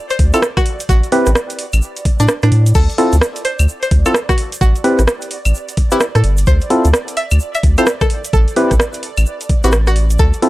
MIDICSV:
0, 0, Header, 1, 6, 480
1, 0, Start_track
1, 0, Tempo, 465116
1, 918, Time_signature, 4, 2, 24, 8
1, 10828, End_track
2, 0, Start_track
2, 0, Title_t, "Analog synth pad"
2, 0, Program_c, 0, 89
2, 0, Note_on_c, 0, 74, 86
2, 2827, Note_off_c, 0, 74, 0
2, 2840, Note_on_c, 0, 74, 93
2, 10828, Note_off_c, 0, 74, 0
2, 10828, End_track
3, 0, Start_track
3, 0, Title_t, "Synth pluck"
3, 0, Program_c, 1, 84
3, 109, Note_on_c, 1, 72, 92
3, 235, Note_off_c, 1, 72, 0
3, 349, Note_on_c, 1, 69, 91
3, 475, Note_off_c, 1, 69, 0
3, 588, Note_on_c, 1, 66, 96
3, 808, Note_off_c, 1, 66, 0
3, 919, Note_on_c, 1, 66, 93
3, 1147, Note_off_c, 1, 66, 0
3, 2269, Note_on_c, 1, 62, 93
3, 2395, Note_off_c, 1, 62, 0
3, 2509, Note_on_c, 1, 62, 88
3, 2729, Note_off_c, 1, 62, 0
3, 2838, Note_on_c, 1, 69, 99
3, 3066, Note_off_c, 1, 69, 0
3, 3558, Note_on_c, 1, 72, 94
3, 3786, Note_off_c, 1, 72, 0
3, 3948, Note_on_c, 1, 72, 90
3, 4075, Note_off_c, 1, 72, 0
3, 4190, Note_on_c, 1, 69, 96
3, 4316, Note_off_c, 1, 69, 0
3, 4428, Note_on_c, 1, 66, 96
3, 4648, Note_off_c, 1, 66, 0
3, 4758, Note_on_c, 1, 66, 95
3, 4986, Note_off_c, 1, 66, 0
3, 6109, Note_on_c, 1, 64, 91
3, 6235, Note_off_c, 1, 64, 0
3, 6349, Note_on_c, 1, 69, 93
3, 6569, Note_off_c, 1, 69, 0
3, 6678, Note_on_c, 1, 72, 102
3, 6906, Note_off_c, 1, 72, 0
3, 7398, Note_on_c, 1, 76, 99
3, 7626, Note_off_c, 1, 76, 0
3, 7790, Note_on_c, 1, 76, 97
3, 7916, Note_off_c, 1, 76, 0
3, 8031, Note_on_c, 1, 72, 94
3, 8156, Note_off_c, 1, 72, 0
3, 8268, Note_on_c, 1, 69, 94
3, 8488, Note_off_c, 1, 69, 0
3, 8599, Note_on_c, 1, 69, 96
3, 8826, Note_off_c, 1, 69, 0
3, 9949, Note_on_c, 1, 66, 94
3, 10075, Note_off_c, 1, 66, 0
3, 10189, Note_on_c, 1, 66, 89
3, 10409, Note_off_c, 1, 66, 0
3, 10520, Note_on_c, 1, 69, 102
3, 10747, Note_off_c, 1, 69, 0
3, 10828, End_track
4, 0, Start_track
4, 0, Title_t, "Synth stab"
4, 0, Program_c, 2, 62
4, 347, Note_on_c, 2, 60, 91
4, 347, Note_on_c, 2, 64, 82
4, 348, Note_on_c, 2, 65, 84
4, 348, Note_on_c, 2, 69, 98
4, 423, Note_off_c, 2, 60, 0
4, 423, Note_off_c, 2, 64, 0
4, 423, Note_off_c, 2, 65, 0
4, 423, Note_off_c, 2, 69, 0
4, 1158, Note_on_c, 2, 67, 94
4, 1159, Note_on_c, 2, 60, 105
4, 1159, Note_on_c, 2, 64, 94
4, 1159, Note_on_c, 2, 71, 110
4, 1339, Note_off_c, 2, 60, 0
4, 1339, Note_off_c, 2, 67, 0
4, 1339, Note_off_c, 2, 71, 0
4, 1340, Note_off_c, 2, 64, 0
4, 3077, Note_on_c, 2, 64, 92
4, 3078, Note_on_c, 2, 60, 101
4, 3078, Note_on_c, 2, 65, 96
4, 3078, Note_on_c, 2, 69, 117
4, 3259, Note_off_c, 2, 60, 0
4, 3259, Note_off_c, 2, 64, 0
4, 3259, Note_off_c, 2, 65, 0
4, 3259, Note_off_c, 2, 69, 0
4, 4188, Note_on_c, 2, 60, 87
4, 4188, Note_on_c, 2, 64, 84
4, 4188, Note_on_c, 2, 65, 81
4, 4188, Note_on_c, 2, 69, 104
4, 4264, Note_off_c, 2, 60, 0
4, 4264, Note_off_c, 2, 64, 0
4, 4264, Note_off_c, 2, 65, 0
4, 4264, Note_off_c, 2, 69, 0
4, 4997, Note_on_c, 2, 60, 107
4, 4997, Note_on_c, 2, 67, 93
4, 4997, Note_on_c, 2, 71, 109
4, 4998, Note_on_c, 2, 64, 99
4, 5178, Note_off_c, 2, 67, 0
4, 5179, Note_off_c, 2, 60, 0
4, 5179, Note_off_c, 2, 64, 0
4, 5179, Note_off_c, 2, 71, 0
4, 6107, Note_on_c, 2, 60, 92
4, 6107, Note_on_c, 2, 64, 84
4, 6107, Note_on_c, 2, 67, 82
4, 6107, Note_on_c, 2, 71, 101
4, 6183, Note_off_c, 2, 60, 0
4, 6183, Note_off_c, 2, 64, 0
4, 6183, Note_off_c, 2, 67, 0
4, 6183, Note_off_c, 2, 71, 0
4, 6918, Note_on_c, 2, 60, 104
4, 6918, Note_on_c, 2, 64, 93
4, 6918, Note_on_c, 2, 65, 94
4, 6918, Note_on_c, 2, 69, 112
4, 7099, Note_off_c, 2, 60, 0
4, 7099, Note_off_c, 2, 64, 0
4, 7099, Note_off_c, 2, 65, 0
4, 7099, Note_off_c, 2, 69, 0
4, 8028, Note_on_c, 2, 64, 83
4, 8029, Note_on_c, 2, 60, 90
4, 8029, Note_on_c, 2, 65, 78
4, 8029, Note_on_c, 2, 69, 101
4, 8104, Note_off_c, 2, 60, 0
4, 8104, Note_off_c, 2, 64, 0
4, 8104, Note_off_c, 2, 65, 0
4, 8104, Note_off_c, 2, 69, 0
4, 8839, Note_on_c, 2, 60, 104
4, 8839, Note_on_c, 2, 64, 92
4, 8839, Note_on_c, 2, 67, 91
4, 8839, Note_on_c, 2, 71, 113
4, 9019, Note_off_c, 2, 67, 0
4, 9020, Note_off_c, 2, 60, 0
4, 9020, Note_off_c, 2, 64, 0
4, 9020, Note_off_c, 2, 71, 0
4, 9949, Note_on_c, 2, 60, 86
4, 9949, Note_on_c, 2, 64, 84
4, 9949, Note_on_c, 2, 67, 85
4, 9950, Note_on_c, 2, 71, 102
4, 10024, Note_off_c, 2, 60, 0
4, 10024, Note_off_c, 2, 64, 0
4, 10024, Note_off_c, 2, 67, 0
4, 10024, Note_off_c, 2, 71, 0
4, 10757, Note_on_c, 2, 64, 90
4, 10757, Note_on_c, 2, 65, 89
4, 10758, Note_on_c, 2, 60, 107
4, 10758, Note_on_c, 2, 69, 117
4, 10828, Note_off_c, 2, 60, 0
4, 10828, Note_off_c, 2, 64, 0
4, 10828, Note_off_c, 2, 65, 0
4, 10828, Note_off_c, 2, 69, 0
4, 10828, End_track
5, 0, Start_track
5, 0, Title_t, "Sub bass"
5, 0, Program_c, 3, 38
5, 198, Note_on_c, 3, 38, 94
5, 332, Note_off_c, 3, 38, 0
5, 919, Note_on_c, 3, 33, 97
5, 1052, Note_off_c, 3, 33, 0
5, 1310, Note_on_c, 3, 33, 89
5, 1389, Note_off_c, 3, 33, 0
5, 1789, Note_on_c, 3, 33, 83
5, 1869, Note_off_c, 3, 33, 0
5, 2268, Note_on_c, 3, 45, 89
5, 2348, Note_off_c, 3, 45, 0
5, 2509, Note_on_c, 3, 45, 83
5, 2589, Note_off_c, 3, 45, 0
5, 2599, Note_on_c, 3, 45, 101
5, 2819, Note_off_c, 3, 45, 0
5, 2839, Note_on_c, 3, 38, 95
5, 2972, Note_off_c, 3, 38, 0
5, 3229, Note_on_c, 3, 38, 90
5, 3309, Note_off_c, 3, 38, 0
5, 3710, Note_on_c, 3, 38, 82
5, 3789, Note_off_c, 3, 38, 0
5, 4039, Note_on_c, 3, 38, 94
5, 4172, Note_off_c, 3, 38, 0
5, 4759, Note_on_c, 3, 33, 102
5, 4892, Note_off_c, 3, 33, 0
5, 5149, Note_on_c, 3, 33, 88
5, 5229, Note_off_c, 3, 33, 0
5, 5630, Note_on_c, 3, 33, 77
5, 5709, Note_off_c, 3, 33, 0
5, 6350, Note_on_c, 3, 45, 85
5, 6429, Note_off_c, 3, 45, 0
5, 6439, Note_on_c, 3, 31, 90
5, 6659, Note_off_c, 3, 31, 0
5, 6679, Note_on_c, 3, 38, 105
5, 6813, Note_off_c, 3, 38, 0
5, 7069, Note_on_c, 3, 38, 88
5, 7149, Note_off_c, 3, 38, 0
5, 7550, Note_on_c, 3, 38, 83
5, 7629, Note_off_c, 3, 38, 0
5, 7879, Note_on_c, 3, 38, 95
5, 8012, Note_off_c, 3, 38, 0
5, 8599, Note_on_c, 3, 33, 104
5, 8732, Note_off_c, 3, 33, 0
5, 8989, Note_on_c, 3, 33, 91
5, 9069, Note_off_c, 3, 33, 0
5, 9470, Note_on_c, 3, 33, 78
5, 9549, Note_off_c, 3, 33, 0
5, 9949, Note_on_c, 3, 33, 94
5, 10503, Note_off_c, 3, 33, 0
5, 10519, Note_on_c, 3, 38, 101
5, 10653, Note_off_c, 3, 38, 0
5, 10828, End_track
6, 0, Start_track
6, 0, Title_t, "Drums"
6, 103, Note_on_c, 9, 82, 40
6, 107, Note_on_c, 9, 42, 59
6, 197, Note_on_c, 9, 46, 113
6, 198, Note_on_c, 9, 36, 103
6, 207, Note_off_c, 9, 82, 0
6, 210, Note_off_c, 9, 42, 0
6, 300, Note_off_c, 9, 46, 0
6, 302, Note_off_c, 9, 36, 0
6, 346, Note_on_c, 9, 82, 74
6, 348, Note_on_c, 9, 42, 70
6, 348, Note_on_c, 9, 75, 63
6, 437, Note_on_c, 9, 37, 120
6, 440, Note_off_c, 9, 82, 0
6, 440, Note_on_c, 9, 82, 68
6, 451, Note_off_c, 9, 42, 0
6, 451, Note_off_c, 9, 75, 0
6, 541, Note_off_c, 9, 37, 0
6, 543, Note_off_c, 9, 82, 0
6, 588, Note_on_c, 9, 37, 68
6, 588, Note_on_c, 9, 42, 41
6, 589, Note_on_c, 9, 36, 104
6, 597, Note_on_c, 9, 82, 37
6, 677, Note_on_c, 9, 46, 107
6, 691, Note_off_c, 9, 37, 0
6, 691, Note_off_c, 9, 42, 0
6, 692, Note_off_c, 9, 36, 0
6, 700, Note_off_c, 9, 82, 0
6, 780, Note_off_c, 9, 46, 0
6, 826, Note_on_c, 9, 82, 73
6, 827, Note_on_c, 9, 42, 70
6, 919, Note_on_c, 9, 36, 115
6, 927, Note_off_c, 9, 82, 0
6, 927, Note_on_c, 9, 82, 67
6, 930, Note_off_c, 9, 42, 0
6, 1022, Note_off_c, 9, 36, 0
6, 1030, Note_off_c, 9, 82, 0
6, 1067, Note_on_c, 9, 42, 40
6, 1069, Note_on_c, 9, 82, 43
6, 1156, Note_on_c, 9, 46, 116
6, 1170, Note_off_c, 9, 42, 0
6, 1172, Note_off_c, 9, 82, 0
6, 1260, Note_off_c, 9, 46, 0
6, 1304, Note_on_c, 9, 82, 79
6, 1307, Note_on_c, 9, 37, 60
6, 1307, Note_on_c, 9, 42, 66
6, 1397, Note_off_c, 9, 37, 0
6, 1397, Note_on_c, 9, 37, 125
6, 1400, Note_off_c, 9, 82, 0
6, 1400, Note_on_c, 9, 82, 58
6, 1410, Note_off_c, 9, 42, 0
6, 1500, Note_off_c, 9, 37, 0
6, 1504, Note_off_c, 9, 82, 0
6, 1547, Note_on_c, 9, 42, 59
6, 1552, Note_on_c, 9, 82, 38
6, 1637, Note_on_c, 9, 46, 120
6, 1651, Note_off_c, 9, 42, 0
6, 1656, Note_off_c, 9, 82, 0
6, 1740, Note_off_c, 9, 46, 0
6, 1786, Note_on_c, 9, 82, 75
6, 1788, Note_on_c, 9, 42, 73
6, 1788, Note_on_c, 9, 75, 81
6, 1878, Note_off_c, 9, 82, 0
6, 1878, Note_on_c, 9, 82, 71
6, 1891, Note_off_c, 9, 42, 0
6, 1891, Note_off_c, 9, 75, 0
6, 1982, Note_off_c, 9, 82, 0
6, 2028, Note_on_c, 9, 42, 60
6, 2030, Note_on_c, 9, 82, 40
6, 2118, Note_on_c, 9, 46, 113
6, 2119, Note_on_c, 9, 36, 110
6, 2131, Note_off_c, 9, 42, 0
6, 2133, Note_off_c, 9, 82, 0
6, 2221, Note_off_c, 9, 46, 0
6, 2222, Note_off_c, 9, 36, 0
6, 2268, Note_on_c, 9, 37, 32
6, 2268, Note_on_c, 9, 42, 68
6, 2268, Note_on_c, 9, 82, 77
6, 2354, Note_off_c, 9, 82, 0
6, 2354, Note_on_c, 9, 82, 64
6, 2358, Note_off_c, 9, 37, 0
6, 2358, Note_on_c, 9, 37, 113
6, 2372, Note_off_c, 9, 42, 0
6, 2457, Note_off_c, 9, 82, 0
6, 2461, Note_off_c, 9, 37, 0
6, 2505, Note_on_c, 9, 82, 37
6, 2509, Note_on_c, 9, 37, 70
6, 2509, Note_on_c, 9, 42, 40
6, 2599, Note_on_c, 9, 46, 115
6, 2608, Note_off_c, 9, 82, 0
6, 2613, Note_off_c, 9, 37, 0
6, 2613, Note_off_c, 9, 42, 0
6, 2702, Note_off_c, 9, 46, 0
6, 2749, Note_on_c, 9, 42, 71
6, 2751, Note_on_c, 9, 82, 76
6, 2835, Note_off_c, 9, 82, 0
6, 2835, Note_on_c, 9, 82, 73
6, 2838, Note_on_c, 9, 49, 79
6, 2839, Note_on_c, 9, 36, 127
6, 2852, Note_off_c, 9, 42, 0
6, 2938, Note_off_c, 9, 82, 0
6, 2942, Note_off_c, 9, 36, 0
6, 2942, Note_off_c, 9, 49, 0
6, 2988, Note_on_c, 9, 42, 37
6, 2992, Note_on_c, 9, 82, 38
6, 3078, Note_on_c, 9, 46, 113
6, 3091, Note_off_c, 9, 42, 0
6, 3095, Note_off_c, 9, 82, 0
6, 3181, Note_off_c, 9, 46, 0
6, 3228, Note_on_c, 9, 42, 65
6, 3228, Note_on_c, 9, 82, 79
6, 3317, Note_on_c, 9, 37, 121
6, 3328, Note_off_c, 9, 82, 0
6, 3328, Note_on_c, 9, 82, 64
6, 3331, Note_off_c, 9, 42, 0
6, 3420, Note_off_c, 9, 37, 0
6, 3431, Note_off_c, 9, 82, 0
6, 3468, Note_on_c, 9, 42, 53
6, 3469, Note_on_c, 9, 82, 39
6, 3558, Note_on_c, 9, 46, 122
6, 3571, Note_off_c, 9, 42, 0
6, 3573, Note_off_c, 9, 82, 0
6, 3661, Note_off_c, 9, 46, 0
6, 3708, Note_on_c, 9, 42, 70
6, 3708, Note_on_c, 9, 75, 77
6, 3711, Note_on_c, 9, 82, 85
6, 3802, Note_off_c, 9, 82, 0
6, 3802, Note_on_c, 9, 82, 74
6, 3811, Note_off_c, 9, 42, 0
6, 3811, Note_off_c, 9, 75, 0
6, 3906, Note_off_c, 9, 82, 0
6, 3948, Note_on_c, 9, 42, 58
6, 3951, Note_on_c, 9, 82, 42
6, 4037, Note_on_c, 9, 46, 111
6, 4039, Note_on_c, 9, 36, 113
6, 4051, Note_off_c, 9, 42, 0
6, 4054, Note_off_c, 9, 82, 0
6, 4141, Note_off_c, 9, 46, 0
6, 4142, Note_off_c, 9, 36, 0
6, 4186, Note_on_c, 9, 82, 81
6, 4188, Note_on_c, 9, 42, 67
6, 4188, Note_on_c, 9, 75, 59
6, 4277, Note_on_c, 9, 37, 126
6, 4285, Note_off_c, 9, 82, 0
6, 4285, Note_on_c, 9, 82, 66
6, 4291, Note_off_c, 9, 42, 0
6, 4291, Note_off_c, 9, 75, 0
6, 4380, Note_off_c, 9, 37, 0
6, 4388, Note_off_c, 9, 82, 0
6, 4428, Note_on_c, 9, 37, 75
6, 4428, Note_on_c, 9, 42, 37
6, 4429, Note_on_c, 9, 36, 106
6, 4436, Note_on_c, 9, 82, 44
6, 4517, Note_on_c, 9, 46, 111
6, 4531, Note_off_c, 9, 37, 0
6, 4531, Note_off_c, 9, 42, 0
6, 4532, Note_off_c, 9, 36, 0
6, 4539, Note_off_c, 9, 82, 0
6, 4621, Note_off_c, 9, 46, 0
6, 4668, Note_on_c, 9, 42, 71
6, 4676, Note_on_c, 9, 82, 75
6, 4759, Note_on_c, 9, 36, 127
6, 4765, Note_off_c, 9, 82, 0
6, 4765, Note_on_c, 9, 82, 72
6, 4771, Note_off_c, 9, 42, 0
6, 4862, Note_off_c, 9, 36, 0
6, 4868, Note_off_c, 9, 82, 0
6, 4907, Note_on_c, 9, 82, 44
6, 4908, Note_on_c, 9, 42, 38
6, 4997, Note_on_c, 9, 46, 103
6, 5011, Note_off_c, 9, 42, 0
6, 5011, Note_off_c, 9, 82, 0
6, 5101, Note_off_c, 9, 46, 0
6, 5148, Note_on_c, 9, 37, 62
6, 5148, Note_on_c, 9, 42, 62
6, 5150, Note_on_c, 9, 82, 83
6, 5237, Note_off_c, 9, 37, 0
6, 5237, Note_on_c, 9, 37, 127
6, 5239, Note_off_c, 9, 82, 0
6, 5239, Note_on_c, 9, 82, 64
6, 5251, Note_off_c, 9, 42, 0
6, 5341, Note_off_c, 9, 37, 0
6, 5342, Note_off_c, 9, 82, 0
6, 5383, Note_on_c, 9, 82, 39
6, 5387, Note_on_c, 9, 42, 51
6, 5477, Note_on_c, 9, 46, 115
6, 5486, Note_off_c, 9, 82, 0
6, 5491, Note_off_c, 9, 42, 0
6, 5580, Note_off_c, 9, 46, 0
6, 5627, Note_on_c, 9, 42, 63
6, 5627, Note_on_c, 9, 75, 81
6, 5631, Note_on_c, 9, 82, 80
6, 5723, Note_off_c, 9, 82, 0
6, 5723, Note_on_c, 9, 82, 66
6, 5731, Note_off_c, 9, 42, 0
6, 5731, Note_off_c, 9, 75, 0
6, 5826, Note_off_c, 9, 82, 0
6, 5867, Note_on_c, 9, 42, 54
6, 5869, Note_on_c, 9, 82, 43
6, 5957, Note_on_c, 9, 46, 112
6, 5959, Note_on_c, 9, 36, 109
6, 5971, Note_off_c, 9, 42, 0
6, 5972, Note_off_c, 9, 82, 0
6, 6060, Note_off_c, 9, 46, 0
6, 6062, Note_off_c, 9, 36, 0
6, 6102, Note_on_c, 9, 82, 88
6, 6107, Note_on_c, 9, 42, 65
6, 6196, Note_off_c, 9, 82, 0
6, 6196, Note_on_c, 9, 82, 75
6, 6197, Note_on_c, 9, 37, 127
6, 6211, Note_off_c, 9, 42, 0
6, 6299, Note_off_c, 9, 82, 0
6, 6300, Note_off_c, 9, 37, 0
6, 6348, Note_on_c, 9, 37, 72
6, 6348, Note_on_c, 9, 42, 36
6, 6354, Note_on_c, 9, 82, 41
6, 6437, Note_on_c, 9, 46, 109
6, 6451, Note_off_c, 9, 37, 0
6, 6451, Note_off_c, 9, 42, 0
6, 6458, Note_off_c, 9, 82, 0
6, 6540, Note_off_c, 9, 46, 0
6, 6579, Note_on_c, 9, 82, 88
6, 6587, Note_on_c, 9, 42, 68
6, 6675, Note_off_c, 9, 82, 0
6, 6675, Note_on_c, 9, 82, 76
6, 6679, Note_on_c, 9, 36, 127
6, 6690, Note_off_c, 9, 42, 0
6, 6778, Note_off_c, 9, 82, 0
6, 6782, Note_off_c, 9, 36, 0
6, 6822, Note_on_c, 9, 82, 44
6, 6827, Note_on_c, 9, 42, 37
6, 6917, Note_on_c, 9, 46, 107
6, 6925, Note_off_c, 9, 82, 0
6, 6931, Note_off_c, 9, 42, 0
6, 7020, Note_off_c, 9, 46, 0
6, 7067, Note_on_c, 9, 42, 62
6, 7067, Note_on_c, 9, 82, 89
6, 7157, Note_on_c, 9, 37, 127
6, 7164, Note_off_c, 9, 82, 0
6, 7164, Note_on_c, 9, 82, 64
6, 7171, Note_off_c, 9, 42, 0
6, 7260, Note_off_c, 9, 37, 0
6, 7267, Note_off_c, 9, 82, 0
6, 7307, Note_on_c, 9, 42, 53
6, 7309, Note_on_c, 9, 82, 40
6, 7397, Note_on_c, 9, 46, 112
6, 7410, Note_off_c, 9, 42, 0
6, 7412, Note_off_c, 9, 82, 0
6, 7500, Note_off_c, 9, 46, 0
6, 7543, Note_on_c, 9, 82, 78
6, 7548, Note_on_c, 9, 42, 64
6, 7548, Note_on_c, 9, 75, 81
6, 7633, Note_off_c, 9, 82, 0
6, 7633, Note_on_c, 9, 82, 72
6, 7651, Note_off_c, 9, 42, 0
6, 7651, Note_off_c, 9, 75, 0
6, 7736, Note_off_c, 9, 82, 0
6, 7788, Note_on_c, 9, 42, 53
6, 7789, Note_on_c, 9, 82, 42
6, 7878, Note_on_c, 9, 46, 106
6, 7879, Note_on_c, 9, 36, 116
6, 7891, Note_off_c, 9, 42, 0
6, 7892, Note_off_c, 9, 82, 0
6, 7981, Note_off_c, 9, 46, 0
6, 7982, Note_off_c, 9, 36, 0
6, 8027, Note_on_c, 9, 82, 81
6, 8028, Note_on_c, 9, 42, 68
6, 8028, Note_on_c, 9, 75, 60
6, 8118, Note_off_c, 9, 82, 0
6, 8118, Note_on_c, 9, 37, 127
6, 8118, Note_on_c, 9, 82, 80
6, 8131, Note_off_c, 9, 42, 0
6, 8131, Note_off_c, 9, 75, 0
6, 8221, Note_off_c, 9, 82, 0
6, 8222, Note_off_c, 9, 37, 0
6, 8269, Note_on_c, 9, 36, 111
6, 8269, Note_on_c, 9, 37, 73
6, 8269, Note_on_c, 9, 42, 37
6, 8270, Note_on_c, 9, 82, 39
6, 8359, Note_on_c, 9, 46, 109
6, 8372, Note_off_c, 9, 36, 0
6, 8372, Note_off_c, 9, 37, 0
6, 8372, Note_off_c, 9, 42, 0
6, 8374, Note_off_c, 9, 82, 0
6, 8462, Note_off_c, 9, 46, 0
6, 8509, Note_on_c, 9, 42, 65
6, 8512, Note_on_c, 9, 82, 82
6, 8599, Note_on_c, 9, 36, 127
6, 8604, Note_off_c, 9, 82, 0
6, 8604, Note_on_c, 9, 82, 62
6, 8612, Note_off_c, 9, 42, 0
6, 8702, Note_off_c, 9, 36, 0
6, 8707, Note_off_c, 9, 82, 0
6, 8748, Note_on_c, 9, 42, 35
6, 8756, Note_on_c, 9, 82, 42
6, 8838, Note_on_c, 9, 46, 102
6, 8852, Note_off_c, 9, 42, 0
6, 8860, Note_off_c, 9, 82, 0
6, 8941, Note_off_c, 9, 46, 0
6, 8988, Note_on_c, 9, 37, 63
6, 8988, Note_on_c, 9, 42, 66
6, 8989, Note_on_c, 9, 36, 69
6, 8996, Note_on_c, 9, 82, 77
6, 9078, Note_off_c, 9, 37, 0
6, 9078, Note_on_c, 9, 37, 127
6, 9089, Note_off_c, 9, 82, 0
6, 9089, Note_on_c, 9, 82, 67
6, 9091, Note_off_c, 9, 42, 0
6, 9092, Note_off_c, 9, 36, 0
6, 9181, Note_off_c, 9, 37, 0
6, 9193, Note_off_c, 9, 82, 0
6, 9218, Note_on_c, 9, 82, 36
6, 9228, Note_on_c, 9, 42, 53
6, 9318, Note_on_c, 9, 46, 106
6, 9321, Note_off_c, 9, 82, 0
6, 9331, Note_off_c, 9, 42, 0
6, 9421, Note_off_c, 9, 46, 0
6, 9468, Note_on_c, 9, 42, 66
6, 9468, Note_on_c, 9, 75, 83
6, 9470, Note_on_c, 9, 82, 78
6, 9557, Note_off_c, 9, 82, 0
6, 9557, Note_on_c, 9, 82, 73
6, 9571, Note_off_c, 9, 42, 0
6, 9571, Note_off_c, 9, 75, 0
6, 9660, Note_off_c, 9, 82, 0
6, 9708, Note_on_c, 9, 42, 57
6, 9711, Note_on_c, 9, 82, 43
6, 9798, Note_on_c, 9, 46, 105
6, 9799, Note_on_c, 9, 36, 111
6, 9811, Note_off_c, 9, 42, 0
6, 9814, Note_off_c, 9, 82, 0
6, 9901, Note_off_c, 9, 46, 0
6, 9902, Note_off_c, 9, 36, 0
6, 9948, Note_on_c, 9, 42, 65
6, 9948, Note_on_c, 9, 82, 79
6, 10029, Note_off_c, 9, 82, 0
6, 10029, Note_on_c, 9, 82, 69
6, 10038, Note_on_c, 9, 37, 127
6, 10051, Note_off_c, 9, 42, 0
6, 10133, Note_off_c, 9, 82, 0
6, 10141, Note_off_c, 9, 37, 0
6, 10186, Note_on_c, 9, 82, 43
6, 10188, Note_on_c, 9, 37, 68
6, 10188, Note_on_c, 9, 42, 37
6, 10277, Note_on_c, 9, 46, 102
6, 10289, Note_off_c, 9, 82, 0
6, 10291, Note_off_c, 9, 37, 0
6, 10291, Note_off_c, 9, 42, 0
6, 10380, Note_off_c, 9, 46, 0
6, 10427, Note_on_c, 9, 82, 86
6, 10428, Note_on_c, 9, 42, 67
6, 10512, Note_off_c, 9, 82, 0
6, 10512, Note_on_c, 9, 82, 67
6, 10519, Note_on_c, 9, 36, 125
6, 10531, Note_off_c, 9, 42, 0
6, 10616, Note_off_c, 9, 82, 0
6, 10622, Note_off_c, 9, 36, 0
6, 10665, Note_on_c, 9, 82, 43
6, 10668, Note_on_c, 9, 42, 39
6, 10758, Note_on_c, 9, 46, 104
6, 10768, Note_off_c, 9, 82, 0
6, 10772, Note_off_c, 9, 42, 0
6, 10828, Note_off_c, 9, 46, 0
6, 10828, End_track
0, 0, End_of_file